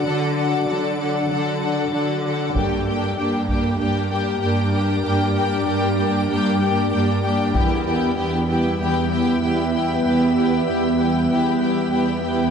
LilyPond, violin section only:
\new Staff \with { instrumentName = "Violin section" } { \time 4/4 \key g \major \tempo 4 = 96 <a' fis''>8 <a' fis''>8 <a' fis''>8 <a' fis''>8 <a' fis''>8 <a' fis''>8 <a' fis''>8 <a' fis''>8 | <g' g''>8 <g' g''>8 <g' g''>8 <g' g''>8 <g' g''>8 <g' g''>8 <g' g''>8 <g' g''>8 | <g' g''>8 <g' g''>8 <g' g''>8 <g' g''>8 <g' g''>8 <g' g''>8 <g' g''>8 <g' g''>8 | <g' g''>8 <g' g''>8 <g' g''>8 <g' g''>8 <g' g''>8 <g' g''>8 <g' g''>8 <g' g''>8 |
<g' g''>8 <g' g''>8 <g' g''>8 <g' g''>8 <g' g''>8 <g' g''>8 <g' g''>8 <g' g''>8 | }